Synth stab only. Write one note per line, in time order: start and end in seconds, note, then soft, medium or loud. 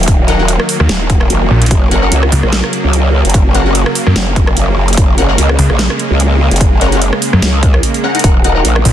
0.28 0.38 D#4 medium
0.28 0.38 A#4 medium
0.28 0.38 F#5 loud
0.39 0.56 D#4 medium
0.39 0.56 A#4 medium
0.39 0.56 F#5 medium
1.91 2.00 C#4 medium
1.91 2.00 A#4 medium
1.91 2.00 F#5 medium
2.02 2.13 C#4 medium
2.02 2.13 A#4 medium
2.02 2.13 F#5 medium
3.55 3.64 C#4 medium
3.55 3.64 A#4 medium
3.55 3.64 F#5 loud
3.66 3.83 C#4 medium
3.66 3.83 A#4 medium
3.66 3.83 F#5 medium
5.18 5.26 C#4 medium
5.18 5.26 A#4 medium
5.18 5.26 F#5 medium
5.29 5.39 C#4 medium
5.29 5.39 A#4 medium
5.29 5.39 F#5 medium
6.81 6.91 C#4 medium
6.81 6.91 A#4 medium
6.81 6.91 F#5 loud
6.92 7.10 C#4 medium
6.92 7.10 A#4 medium
6.92 7.09 F#5 medium
8.04 8.13 C#4 medium
8.04 8.13 A#4 medium
8.04 8.13 F#5 loud
8.15 8.32 D#4 medium
8.15 8.32 A#4 medium
8.15 8.32 F#5 loud
8.44 8.53 D#4 medium
8.44 8.53 A#4 medium
8.44 8.53 F#5 medium
8.55 8.66 D#4 medium
8.55 8.66 A#4 medium
8.55 8.66 F#5 medium